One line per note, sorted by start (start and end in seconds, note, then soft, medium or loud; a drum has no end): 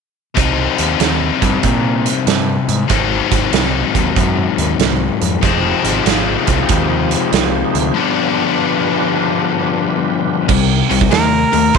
0.35 0.66 C2 medium
0.35 2.88 C3 medium
0.35 2.88 G3 medium
0.35 2.91 C4 medium
0.35 2.91 D#4 medium
0.35 kick medium
0.35 closed hi-hat medium
0.78 0.94 D#2 medium
0.78 closed hi-hat medium
1.00 1.29 D#2 medium
1.00 snare medium
1.00 closed hi-hat medium
1.42 1.57 G2 medium
1.42 kick medium
1.42 closed hi-hat medium
1.63 2.08 A#2 medium
1.63 kick medium
1.63 closed hi-hat medium
2.06 closed hi-hat medium
2.27 2.56 G2 medium
2.27 snare medium
2.27 closed hi-hat medium
2.68 2.84 G#2 medium
2.68 closed hi-hat medium
2.88 3.19 G#1 medium
2.88 5.41 G#2 medium
2.88 5.42 D#3 medium
2.88 5.42 F#3 medium
2.88 5.43 C4 medium
2.88 5.43 D#4 medium
2.88 kick medium
2.88 closed hi-hat medium
3.32 3.47 G#1 medium
3.32 kick medium
3.32 closed hi-hat medium
3.52 3.82 C2 medium
3.52 snare medium
3.52 closed hi-hat medium
3.95 4.10 D#2 medium
3.95 kick medium
3.95 closed hi-hat medium
4.16 4.46 F#2 medium
4.16 kick medium
4.16 closed hi-hat medium
4.58 4.73 D#2 medium
4.58 closed hi-hat soft
4.79 5.09 C2 medium
4.79 snare medium
4.79 closed hi-hat medium
5.22 5.37 F2 medium
5.22 closed hi-hat medium
5.41 5.72 F1 medium
5.41 7.94 F2 medium
5.41 7.95 C3 medium
5.41 7.95 F3 medium
5.41 7.96 G#3 medium
5.41 7.96 C4 medium
5.41 7.93 D#4 medium
5.41 7.93 G4 medium
5.41 7.93 G#4 medium
5.41 7.94 C5 medium
5.41 kick loud
5.41 closed hi-hat medium
5.84 5.99 G#1 medium
5.84 closed hi-hat medium
6.05 6.35 G#1 medium
6.05 snare medium
6.05 closed hi-hat medium
6.47 6.63 C2 medium
6.47 kick medium
6.47 closed hi-hat medium
6.69 7.14 D#2 medium
6.69 kick medium
6.69 closed hi-hat medium
7.11 closed hi-hat medium
7.32 7.62 C2 medium
7.32 snare medium
7.32 closed hi-hat medium
7.74 7.90 D2 medium
7.74 closed hi-hat medium
7.94 10.47 G2 medium
7.94 10.47 D3 medium
7.94 10.48 F3 medium
7.94 10.48 B3 medium
7.94 10.47 D4 medium
7.94 10.49 D4 medium
7.94 10.47 F4 medium
7.94 10.47 G4 medium
7.94 10.47 B4 medium
10.47 10.82 C2 medium
10.47 10.86 C3 medium
10.47 10.86 G3 medium
10.47 11.78 C4 medium
10.47 11.78 D#4 medium
10.47 11.78 G4 medium
10.47 11.78 A#4 medium
10.47 kick loud
10.47 crash medium
10.89 11.07 C2 medium
10.89 11.09 C3 medium
10.89 11.10 G3 medium
10.89 open hi-hat medium
11.01 kick medium
11.11 11.44 D#2 medium
11.11 11.49 C3 medium
11.11 11.49 A3 medium
11.11 11.71 A#4 medium
11.11 snare loud
11.11 open hi-hat medium
11.52 11.70 D#2 medium
11.52 11.72 C3 medium
11.52 11.73 A3 medium
11.52 open hi-hat soft
11.74 11.78 D#2 medium
11.74 11.78 C3 medium
11.74 11.78 G3 medium
11.74 kick loud
11.74 open hi-hat medium